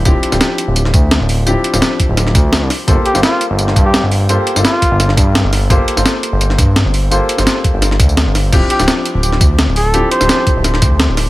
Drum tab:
CC |----------------|----------------|----------------|----------------|
HH |x-x-x-x-x-x-x-o-|x-x-x-x-x-x-x-o-|x-x-x-x-x-x-x-o-|x-x-x-x-x-x-x-o-|
TB |x--xx-x-x-x-x-x-|x--xx-x-x-x-x-x-|x--xx-x-x-x-x-x-|x--xx-x-x-x-x-x-|
SD |---oo----o--o---|---oo---oo--o-o-|---oo----o--o---|---oo---oo--o-o-|
BD |o---------o-----|------o---o-----|o---------o-----|------o---o-----|

CC |----------------|----------------|x---------------|----------------|
HH |x-x-x-x-x-x-x-o-|x-x-x-x-x-x-x-o-|x-x-x-x-x-x-x-o-|x-x-x-x-x-x-x-o-|
TB |x--xx-x-x-x-x-x-|x-xxx-x-x-xxx-x-|x--xx-x-x-x-x-x-|x--xx-x-x-x-x-x-|
SD |---oo----o--o---|---oo---oo--o-o-|---oo----o--o---|---oo---oo--o-o-|
BD |o---------o-----|------o---o-----|o---------o-----|------o---o-----|